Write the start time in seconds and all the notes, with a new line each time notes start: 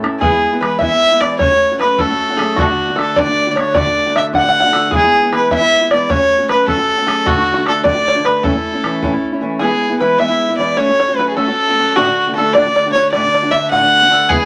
Already playing: A2 E3
0.03 C#4 E4 A4, bodhran
0.20 E3 G#3 B3 E4 G#4, bodhran
0.32 G#3 B3 E4
0.52 G#3 B3 E4
0.61 E3 G#3 B3 E4 B4, bodhran
0.79 E3 G#3 B3 E5, bodhran
0.83 E4
0.91 G#3 B3 E4
1.11 G#3 B3 E4
1.20 E3 G#3 B3 E4 D5, bodhran
1.39 F#3 A3 C#4 F#4 C#5, bodhran
1.51 A3 C#4 F#4
1.71 A3 C#4 F#4
1.79 F#3 A3 C#4 F#4 B4, bodhran
1.98 F#3 A3 C#4 F#4 A4, bodhran
2.09 A3 C#4 F#4
2.29 A3 C#4 F#4
2.37 F#3 A3 G#4, bodhran
2.41 C#4 F#4
2.56 D2 A2 D3 A3 D4 F#4, bodhran
2.61 F#4
2.69 D3 A3 D4 F#4
2.88 D3 A3 D4 F#4
2.96 D3 A3 D4 F#4 A4, bodhran
3.00 A4
3.16 D2 A2 D3 A3 D4 F#4 D5, bodhran
3.27 D3 A3 D4 F#4
3.47 D3 A3 D4 F#4
3.51 D5
3.56 D3 A3 D4 F#4 C#5, bodhran
3.60 C#5
3.74 D2 A2 D3 A3 D4 F#4 D5, bodhran
3.78 D5
3.86 D3 A3 D4 F#4
4.06 D3 A3 D4 F#4
4.15 D3 A3 D4 F#4 E5, bodhran
4.32 D2 A2 D3 A3 D4 F#4 F#5, bodhran
4.38 F#5
4.43 D3 A3 D4 F#4
4.49 F#5
4.60 D4 F#4 F#5
4.65 D3 A3
4.73 D3 A3 D4 F#4 A4, bodhran
4.91 E3 G#3 B3 E4 G#4, bodhran
4.96 G#4
5.03 G#3 B3 E4
5.23 G#3 B3 E4
5.32 E3 G#3 B3 E4 B4, bodhran
5.36 B4
5.50 E3 G#3 B3 E4 E5, bodhran
5.60 G#3 B3 E4
5.81 G#3 B3 E4
5.90 E3 G#3 B3 E4 D5, bodhran
6.09 F#3 A3 C#4 F#4 C#5, bodhran
6.19 A3 C#4 F#4
6.38 A3 C#4 F#4
6.49 F#3 A3 C#4 F#4 B4, bodhran
6.68 F#3 A3 C#4 F#4 A4, bodhran
6.78 A3 C#4 F#4
6.97 A3 C#4 F#4
7.06 F#3 A3 C#4 F#4 G#4, bodhran
7.25 D2 A2 D3 A3 D4 F#4, bodhran
7.35 D3 A3 D4 F#4
7.40 F#4
7.54 A3 D4 F#4
7.58 D3
7.66 D3 A3 D4 F#4 A4, bodhran
7.83 D2 A2 D3 A3 D4 F#4 D5, bodhran
7.95 D3 A3 D4 F#4
8.08 C#5
8.14 D3 A3 D4 F#4
8.24 D3 A3 D4 F#4 B4, bodhran
8.43 A2 E3 A3 C#4 E4 A4, bodhran
8.54 A3 C#4 E4
8.73 A3 C#4 E4
8.83 E3 A3 C#4 E4, bodhran
9.03 A2 E3 A3 C#4 E4, bodhran
9.13 A3 C#4 E4
9.32 A3 C#4 E4
9.41 E3 A3 C#4 E4
9.59 E3 G#3 B3 E4 G#4
9.70 G#3 B3 E4
9.89 G#3 B3 E4
9.99 E3 G#3 B3 E4 B4
10.18 E3 G#3 B3 E4 E5
10.29 G#3 B3 E4
10.49 G#3 B3 E4
10.57 E3 G#3 B3 E4 D5
10.77 F#3 A3 C#4 F#4 C#5
10.88 A3 C#4 F#4
11.00 C#5
11.08 A3 C#4 F#4
11.17 F#3 A3 C#4 F#4 B4
11.29 G#4
11.35 F#3 A3 C#4 F#4 A4
11.47 A3 C#4 F#4
11.69 A3 C#4 F#4
11.77 F#3 A3 C#4 F#4
11.96 D2 A2 D3 A3 D4 F#4
12.06 D3 A3 D4 F#4
12.27 D3 A3 D4 F#4
12.35 D3 A3 D4 F#4 A4
12.53 D2 A2 D3 A3 D4 F#4 D5
12.66 D3 A3 D4 F#4
12.76 D5
12.86 D3 A3 D4 F#4
12.92 D3 A3 C#5
12.97 D4 F#4
13.12 D2 A2 D3 A3 D4 F#4 D5
13.22 D3 A3 D4 F#4
13.34 D5
13.42 D3 A3 D4 F#4
13.51 D3 A3 D4 F#4 E5
13.70 D2 A2 D3 A3 D4 F#4 F#5
13.80 D3 A3 D4 F#4
14.01 D3 A3 D4 F#4
14.09 D3 A3 D4 F#4 A4
14.29 E3 G#3 B3 E4 G#4, bodhran
14.40 B3 E4